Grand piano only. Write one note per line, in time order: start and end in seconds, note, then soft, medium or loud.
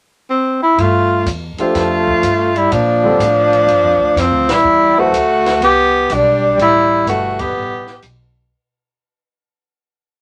1.59 2.20 F3 medium
1.59 2.21 D4 soft
1.59 2.21 G4 soft
1.59 2.21 A4 medium
1.59 2.21 C5 medium
3.04 3.19 D3 medium
3.04 3.19 G3 medium
3.04 3.19 C4 soft
3.04 3.19 F4 medium
3.04 3.19 A4 medium
4.97 5.12 F#3 medium
4.97 5.12 B3 medium
4.97 5.12 E4 medium
4.97 5.12 A4 medium
4.97 5.12 C5 medium
7.07 7.81 B2 soft
7.07 7.81 G3 soft
7.07 7.81 E4 soft
7.07 7.81 A4 soft
7.07 7.81 B4 medium